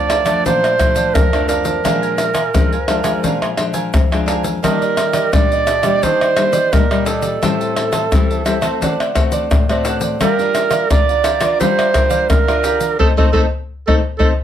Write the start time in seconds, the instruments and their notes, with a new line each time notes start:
Already playing: nylon-string guitar F2 F3 A3 D4, clarinet D5
0.08 cavaquinho A#4 D5 F5 A5, pandeiro, tamborim
0.25 nylon-string guitar F3 A3 D4, cavaquinho D5 F5 A5, pandeiro, tamborim, shaker
0.45 nylon-string guitar A#2, cavaquinho A#4 D5 F5 A5, clarinet C5, pandeiro, shaker, surdo
0.63 cavaquinho D5 F5 A5, pandeiro, tamborim, shaker
0.79 nylon-string guitar F3 A3 D4, muted cavaquinho stroke, pandeiro, tamborim, shaker, surdo
0.95 cavaquinho D5 F5 A5, pandeiro, shaker
1.14 nylon-string guitar F2, clarinet A#4, pandeiro, tamborim, shaker, surdo
1.33 nylon-string guitar F3 A3 D4, cavaquinho D5 F5 A5, pandeiro, tamborim, shaker
1.48 cavaquinho A#4 D5 F5 A5, clarinet A#4, pandeiro, shaker
1.64 cavaquinho D5 F5 A5, pandeiro, shaker
1.84 nylon-string guitar A#2 F3 G#3 D4, cavaquinho D4 A#4 F5 G#5, pandeiro, tamborim, shaker, surdo
2.02 cavaquinho A#4 F5 G#5, pandeiro, shaker
2.18 pandeiro, tamborim, shaker
2.34 cavaquinho A#4 F5 G#5, pandeiro, tamborim, shaker
2.54 nylon-string guitar F2 F3 G#3 D4, pandeiro, tamborim, shaker, surdo
2.72 cavaquinho A#4 F5 G#5, pandeiro, shaker
2.87 nylon-string guitar F3 G#3 D4, cavaquinho D4 A#4 F5 G#5, pandeiro, tamborim
3.03 nylon-string guitar F3 G#3 D4, cavaquinho A#4 F5 G#5, pandeiro, tamborim, shaker
3.23 nylon-string guitar A#2, cavaquinho D4 A#4 F5 G#5, pandeiro, shaker, surdo
3.42 cavaquinho A#4 F5 G#5, pandeiro, tamborim, shaker
3.57 nylon-string guitar F3 G#3 D4, muted cavaquinho stroke, pandeiro, tamborim
3.73 cavaquinho A#4 F5 G#5, pandeiro, shaker
3.94 nylon-string guitar F2, pandeiro, tamborim, shaker, surdo
4.11 nylon-string guitar F3 G#3 D4, cavaquinho A#4 F5 G#5, pandeiro, tamborim, shaker
4.26 cavaquinho D4 A#4 F5 G#5, pandeiro
4.43 cavaquinho A#4 F5 G#5, pandeiro, shaker
4.62 nylon-string guitar D#3 G3 A#3, cavaquinho D4 G4 D5 D#5, clarinet A#4, pandeiro, tamborim, shaker, surdo
4.81 cavaquinho G4 D5 D#5, pandeiro, shaker
4.97 pandeiro, tamborim, shaker
5.13 cavaquinho G4 D5 D#5, pandeiro, tamborim, shaker
5.33 nylon-string guitar A#2 G3 A#3 D4, clarinet D5, pandeiro, tamborim, shaker, surdo
5.51 cavaquinho G4 D5 D#5, pandeiro, shaker
5.67 cavaquinho D4 G4 D5 D#5, pandeiro, tamborim, shaker
5.83 nylon-string guitar G3 A#3 D4, cavaquinho G4 D5 D#5, pandeiro, tamborim, shaker
6.02 nylon-string guitar D#3, cavaquinho D4 G4 D5 D#5, clarinet C5, pandeiro, shaker, surdo
6.21 cavaquinho G4 D5 D#5, pandeiro, tamborim, shaker
6.36 nylon-string guitar G3 A#3 D4, muted cavaquinho stroke, pandeiro, tamborim
6.52 cavaquinho G4 D5 D#5, pandeiro, shaker
6.72 nylon-string guitar A#2 G3 A#3 D4, clarinet A#4, pandeiro, tamborim, shaker, surdo
6.90 nylon-string guitar G3 A#3 D4, cavaquinho G4 D5 D#5, pandeiro, tamborim, shaker
7.05 cavaquinho D4 G4 D5 D#5, clarinet A4, pandeiro, shaker
7.22 cavaquinho G4 D5 D#5, pandeiro, shaker
7.42 nylon-string guitar A2 G3 C4 E4, cavaquinho G4 C5 E5 A5, pandeiro, tamborim, shaker, surdo
7.60 cavaquinho C5 E5 A5, pandeiro, shaker
7.76 pandeiro, tamborim
7.92 cavaquinho C5 E5 A5, pandeiro, tamborim, shaker
8.12 nylon-string guitar E3 G3 C4 E4, muted cavaquinho stroke, pandeiro, tamborim, shaker, surdo
8.30 cavaquinho C5 E5 A5, pandeiro, shaker
8.45 nylon-string guitar G3 C4 E4, cavaquinho G4 C5 E5 A5, pandeiro, tamborim, shaker
8.61 nylon-string guitar A3 C4 F#4, cavaquinho C5 E5 A5, pandeiro, tamborim, shaker
8.81 nylon-string guitar D3, cavaquinho D4 C5 D5 F#5, pandeiro, shaker, surdo
9.00 cavaquinho C5 D5 F#5, pandeiro, tamborim, shaker
9.15 nylon-string guitar A3 C4 F#4, muted cavaquinho stroke, pandeiro, tamborim, surdo
9.32 cavaquinho C5 D5 F#5, pandeiro, shaker
9.51 nylon-string guitar A2, pandeiro, tamborim, shaker, surdo
9.69 nylon-string guitar A3 C4 F#4, cavaquinho C5 D5 F#5, pandeiro, tamborim, shaker
9.85 cavaquinho D4 C5 D5 F#5, pandeiro, shaker
10.01 cavaquinho C5 D5 F#5, pandeiro, shaker
10.20 nylon-string guitar G3 D4 F4 A#4, cavaquinho G4 A#4 D5 F5, clarinet A#4, pandeiro, tamborim, shaker, surdo
10.38 nylon-string guitar D4 F4 A#4, cavaquinho A#4 D5 F5, pandeiro, shaker
10.55 pandeiro, tamborim, shaker
10.71 cavaquinho A#4 D5 F5, pandeiro, tamborim, shaker
10.90 nylon-string guitar D3 D4 F4 A#4, clarinet D5, muted cavaquinho stroke, pandeiro, tamborim, shaker, surdo
11.09 cavaquinho A#4 D5 F5, pandeiro, shaker
11.24 cavaquinho G4 A#4 D5 F5, pandeiro, tamborim, shaker
11.40 nylon-string guitar D4 F4 A#4, cavaquinho A#4 D5 F5, pandeiro, tamborim, shaker
11.60 nylon-string guitar G3, cavaquinho G4 A#4 D5 F5, clarinet C5, pandeiro, shaker, surdo
11.78 cavaquinho A#4 D5 F5, pandeiro, tamborim, shaker
11.94 nylon-string guitar D4 F4 A#4, muted cavaquinho stroke, pandeiro, tamborim, surdo
12.10 cavaquinho A#4 D5 F5, pandeiro, shaker
12.30 nylon-string guitar D3, clarinet A#4, pandeiro, tamborim, shaker, surdo
12.47 nylon-string guitar D4 F4 A#4, cavaquinho A#4 D5 F5, pandeiro, tamborim, shaker
12.63 cavaquinho G4 A#4 D5 F5, pandeiro, shaker
12.80 cavaquinho A#4 D5 F5, pandeiro, shaker
12.99 nylon-string guitar A3 C4 D#4, clarinet A4, cavaquinho A4 C5 D#5, surdo
13.17 nylon-string guitar A3 C4 D#4, clarinet A4, cavaquinho A4 C5 D#5, surdo
13.33 nylon-string guitar A3 C4 D#4, clarinet A4, cavaquinho A4 C5 D#5, surdo
13.87 nylon-string guitar A3 C4 D#4, clarinet A4, cavaquinho A4 C5 D#5, surdo
14.18 nylon-string guitar A3 C4 D#4, clarinet A4, cavaquinho A4 C5 D#5, surdo